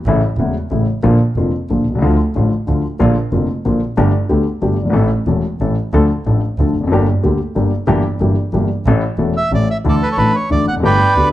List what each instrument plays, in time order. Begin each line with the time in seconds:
0.06 double bass A1, grand piano A1 A2 C#3 E3 A3 E4
0.37 double bass E1, grand piano E1 E2 C#3 E3 A3 E4
0.71 double bass A1, grand piano A1 A2 C#3 E3 A3 E4
1.03 double bass A#1, grand piano A#1 A#2 D3 F3 A#3 F4
1.36 double bass F1, grand piano F1 F2 D3 F3 A#3 F4
1.69 double bass A#1, grand piano A#1 A#2 D3 F3 A#3 F4
1.86 grand piano B1, double bass C2
1.95 grand piano C2 C#2
2.01 double bass D2, grand piano D2 D3 F3 A3 F4
2.35 double bass A1, grand piano A1 A2 D3 F3 A3 F4
2.67 double bass D2, grand piano D2 D3 F3 A3 F4
2.99 grand piano A#1 A#2 D3 F3 A#3 F4, double bass A#1
3.32 grand piano F1 F2 D3 F3 A#3 F4, double bass F1
3.65 grand piano A#1 A#2 D3 F3 A#3 F4, double bass A#1
3.97 grand piano G1 G2 D3 A3 B3 G4, double bass G1
4.29 grand piano D2 D3 A3 B3 G4, double bass D2
4.62 grand piano G1 G2 D3 A3 B3 G4, double bass G1
4.79 grand piano F#1, double bass G1
4.85 grand piano G1
4.90 grand piano G#1 A1 A2 E3 A3 A4
4.94 double bass A1, grand piano C#4
5.27 grand piano E1 E2 E3 A3 C#4 A4, double bass E1
5.61 double bass A1, grand piano A1 A2 E3 A3 C#4 A4
5.93 double bass D2, grand piano D2 D3 F3 A3 D4 A4
6.26 double bass A1, grand piano A1 A2 F3 A3 D4 A4
6.58 double bass D2, grand piano D2 D3 F3 A3 D4 A4
6.75 double bass F1
6.81 grand piano E2 F2
6.87 double bass G1, grand piano F#2
6.92 grand piano G1 G2 D3 G3 A#3 G4
7.23 grand piano D2 D3 G3 A#3 G4, double bass D2
7.55 grand piano G1 G2 D3 G3 A#3 G4, double bass G1
7.87 grand piano G1 G2 E3 G3 A#3 G4, double bass G1
8.20 double bass G1, grand piano G1 G2 E3 G3 A#3 G4
8.53 double bass G1, grand piano G1 G2 E3 G3 A#3 G4
8.86 double bass A1, grand piano A1 A2 E3 A3 C#4 A4
9.18 double bass E1, grand piano E1 E2 E3 A3 C#4 A4
9.37 bandoneon E5
9.51 double bass A1, grand piano A1 A2 E3 A3 C#4 A4, bandoneon D5
9.71 bandoneon E5
9.84 grand piano D2 D3 E3 A3 D4 A4, double bass D2
9.89 bandoneon A4 D5
10.03 bandoneon B4
10.12 bandoneon C#5
10.18 grand piano A1 A2 E3 A3 D4 A4, double bass A1, bandoneon B4
10.35 bandoneon C#5
10.50 double bass D2, grand piano D2 D3 E3 A3 D4 A4, bandoneon D5
10.67 double bass F1, bandoneon F#5
10.72 grand piano E2
10.76 grand piano F2 F#2
10.82 double bass G1, grand piano G1 G2 D3 A3 B3 G4, bandoneon B4 D5 G5
11.16 double bass D2, grand piano D2 D3 A3 B3 G4